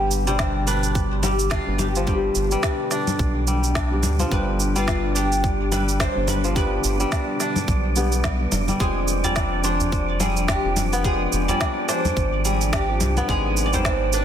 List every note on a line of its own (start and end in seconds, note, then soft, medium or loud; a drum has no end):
0.00 1.60 G1 medium
0.00 8.76 B2 medium
0.00 8.76 D3 medium
0.00 0.23 G3 loud
0.00 0.26 G3 medium
0.00 0.24 B3 medium
0.00 0.24 D4 medium
0.00 0.39 D4 medium
0.00 13.25 D4 medium
0.00 0.24 G4 loud
0.00 0.27 G4 loud
0.00 14.25 D5 medium
0.11 shaker medium
0.26 1.35 B2 medium
0.26 1.35 G3 medium
0.26 1.22 G3 medium
0.26 1.36 D4 medium
0.26 0.67 C5 loud
0.26 1.37 D5 medium
0.26 shaker soft
0.39 0.67 D4 medium
0.39 kick loud
0.39 snare medium
0.39 shaker soft
0.67 1.52 D4 loud
0.67 1.19 B4 loud
0.67 shaker medium
0.83 shaker soft
0.95 kick loud
0.95 shaker soft
1.23 2.07 G3 medium
1.23 1.49 G4 medium
1.23 low conga medium
1.23 shaker medium
1.39 shaker soft
1.50 2.63 D4 medium
1.50 1.80 F4 medium
1.50 kick loud
1.50 snare loud
1.50 shaker soft
1.67 2.30 G1 medium
1.67 2.04 G3 medium
1.67 2.04 B3 medium
1.67 2.05 D4 medium
1.67 2.05 G4 medium
1.78 2.06 G4 medium
1.78 low conga medium
1.78 shaker medium
1.96 4.18 F3 medium
1.96 shaker soft
2.06 2.47 G3 medium
2.06 2.51 G3 medium
2.06 2.48 B3 medium
2.06 2.48 D4 medium
2.06 3.71 G4 medium
2.06 2.48 G4 loud
2.06 kick loud
2.06 shaker soft
2.35 2.57 G1 medium
2.35 shaker medium
2.50 3.59 G3 medium
2.50 3.46 G3 loud
2.50 3.60 B3 medium
2.50 3.60 D4 medium
2.50 3.61 B4 medium
2.50 shaker soft
2.63 2.91 D4 medium
2.63 kick loud
2.63 snare loud
2.63 shaker soft
2.91 3.75 D4 loud
2.91 snare soft
2.91 shaker medium
3.07 low conga medium
3.07 shaker soft
3.19 4.05 B1 loud
3.19 kick loud
3.19 shaker soft
3.47 4.30 G3 medium
3.47 shaker medium
3.64 shaker soft
3.75 4.87 D4 medium
3.75 kick loud
3.75 snare loud
3.75 shaker soft
3.91 4.28 G3 medium
3.91 4.29 B3 medium
3.91 4.29 D4 medium
3.91 4.30 G4 medium
4.03 4.25 D2 loud
4.03 low conga medium
4.03 shaker medium
4.19 6.43 F3 medium
4.19 low conga medium
4.19 shaker soft
4.30 6.09 G1 medium
4.30 4.71 G3 medium
4.30 4.74 G3 medium
4.30 4.72 B3 medium
4.30 4.72 D4 medium
4.30 4.72 G4 loud
4.30 4.77 B4 loud
4.30 kick loud
4.30 shaker soft
4.60 shaker medium
4.74 5.83 G3 medium
4.74 5.70 G3 loud
4.74 5.84 B3 medium
4.74 5.85 D4 medium
4.74 5.17 F4 medium
4.74 shaker soft
4.78 5.85 B4 medium
4.87 5.15 D4 medium
4.87 kick loud
4.87 snare loud
4.87 shaker soft
5.15 5.99 D4 loud
5.15 5.68 G4 loud
5.15 shaker medium
5.32 shaker soft
5.44 kick loud
5.44 shaker soft
5.72 6.55 G3 medium
5.72 6.00 B4 loud
5.72 low conga medium
5.72 shaker medium
5.89 shaker soft
6.00 7.12 D4 medium
6.00 6.28 C5 loud
6.00 kick loud
6.00 snare loud
6.00 shaker soft
6.15 6.79 G1 medium
6.15 6.53 G3 medium
6.15 6.53 B3 medium
6.15 6.53 D4 medium
6.15 6.54 G4 medium
6.28 6.54 B4 loud
6.28 low conga medium
6.28 shaker medium
6.44 8.78 F3 medium
6.44 shaker soft
6.55 6.96 G3 medium
6.55 6.99 G3 medium
6.55 6.96 B3 medium
6.55 6.96 D4 medium
6.55 6.97 G4 loud
6.55 8.21 B4 loud
6.55 kick loud
6.55 shaker soft
6.84 7.05 G1 loud
6.84 shaker medium
6.98 7.93 G3 medium
6.98 8.68 G3 loud
6.98 7.94 B3 medium
6.98 7.94 D4 medium
6.98 shaker soft
7.02 7.95 B4 medium
7.12 7.40 D4 medium
7.12 kick loud
7.12 snare medium
7.12 shaker soft
7.40 9.08 D4 loud
7.40 snare soft
7.40 shaker medium
7.56 low conga medium
7.56 shaker soft
7.68 8.47 B1 medium
7.68 kick loud
7.68 shaker soft
7.95 8.08 G3 medium
7.95 8.08 B3 medium
7.95 9.83 B3 medium
7.95 8.09 D4 medium
7.95 8.09 G4 loud
7.95 shaker medium
8.11 8.77 G3 medium
8.11 8.77 B3 medium
8.11 8.78 D4 medium
8.11 8.79 G4 medium
8.11 shaker soft
8.24 kick loud
8.24 snare loud
8.24 shaker soft
8.52 8.74 F1 medium
8.52 low conga medium
8.52 shaker medium
8.68 8.85 G3 medium
8.68 low conga medium
8.68 shaker soft
8.80 10.57 F1 loud
8.80 13.25 F3 medium
8.80 11.03 G#3 medium
8.80 9.21 C4 medium
8.80 9.21 F4 medium
8.80 9.22 G#4 loud
8.80 9.21 G5 loud
8.80 kick loud
8.80 shaker soft
9.08 shaker medium
9.24 10.19 G3 loud
9.24 10.33 C4 medium
9.24 10.34 F4 medium
9.24 9.64 D5 loud
9.24 10.34 G#5 medium
9.24 udu loud
9.24 shaker soft
9.36 9.63 D4 medium
9.36 kick loud
9.36 snare medium
9.36 shaker soft
9.64 10.48 D4 loud
9.64 10.17 C5 loud
9.64 shaker medium
9.80 udu medium
9.80 shaker soft
9.92 kick loud
9.92 shaker soft
10.20 11.48 G3 medium
10.20 10.47 G#4 medium
10.20 low conga medium
10.20 shaker medium
10.37 shaker soft
10.48 11.60 D4 medium
10.48 10.75 G4 medium
10.48 kick loud
10.48 snare loud
10.48 shaker soft
10.65 11.27 F1 medium
10.65 11.02 C4 medium
10.65 11.02 F4 medium
10.65 11.03 G4 medium
10.77 low conga medium
10.77 shaker medium
10.93 12.79 B3 loud
10.93 shaker soft
11.04 13.28 G#3 medium
11.04 11.45 F4 medium
11.04 11.50 G#4 loud
11.04 11.45 G5 loud
11.04 kick loud
11.04 shaker soft
11.33 11.54 F1 loud
11.33 shaker medium
11.48 12.44 G3 loud
11.48 12.58 F4 medium
11.48 11.88 D5 loud
11.48 12.58 G#5 medium
11.48 udu medium
11.48 shaker soft
11.61 11.88 D4 medium
11.61 kick loud
11.61 snare medium
11.61 shaker soft
11.88 12.72 D4 loud
11.88 12.46 C5 loud
11.88 snare soft
11.88 shaker medium
12.05 low conga medium
12.05 udu medium
12.05 shaker soft
12.17 13.02 G#1 loud
12.17 kick loud
12.17 shaker soft
12.45 13.34 G3 medium
12.45 12.72 G#4 medium
12.45 shaker medium
12.61 shaker soft
12.73 13.85 D4 medium
12.73 12.99 G4 medium
12.73 kick loud
12.73 snare loud
12.73 shaker soft
12.89 13.26 C4 medium
12.89 13.26 F4 medium
12.89 13.27 G4 medium
13.01 13.22 C2 loud
13.01 low conga medium
13.01 shaker medium
13.17 14.25 B3 loud
13.17 low conga medium
13.17 shaker soft
13.28 14.25 G#1 loud
13.28 14.25 C3 medium
13.28 14.25 D#3 medium
13.28 14.25 G#3 medium
13.28 13.69 C4 medium
13.28 13.70 D#4 medium
13.28 13.67 G#4 loud
13.28 13.70 G#5 loud
13.28 kick loud
13.28 shaker soft
13.57 shaker medium
13.66 13.73 D5 medium
13.72 14.25 D#3 medium
13.72 14.25 G3 loud
13.72 14.25 C4 medium
13.72 14.11 C5 loud
13.72 14.25 C5 medium
13.72 udu medium
13.72 shaker soft
13.85 14.13 D4 medium
13.85 kick medium
13.85 snare loud
13.85 shaker soft
14.13 14.25 D4 loud
14.13 14.25 B4 medium
14.13 shaker medium